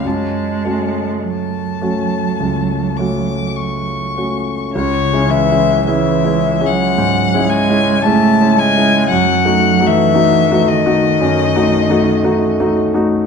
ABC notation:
X:1
M:4/4
L:1/16
Q:1/4=55
K:F#m
V:1 name="Violin"
a4 a6 d'2 c'4 | [K:C#m] c2 e2 e3 f3 g2 a2 g2 | f3 e3 d8 z2 |]
V:2 name="Grand piano"
F,,2 [A,CF]4 [A,CF]2 C,,2 [A,CF]4 [A,CF]2 | [K:C#m] (3C,,2 [G,CE]2 [G,CE]2 (3[G,CE]2 [G,CE]2 [G,CE]2 (3G,,2 [G,CE]2 [G,CE]2 (3[G,CE]2 [G,CE]2 [G,CE]2 | (3F,,2 [A,DF]2 [A,DF]2 (3[A,DF]2 [A,DF]2 [A,DF]2 (3F,,2 [A,DF]2 [A,DF]2 (3[A,DF]2 [A,DF]2 [A,DF]2 |]
V:3 name="Cello" clef=bass
G,4 F,8- F,2 z2 | [K:C#m] C,2 E,2 E,3 F,3 G,2 A,2 G,2 | F,3 E,3 D,8 z2 |]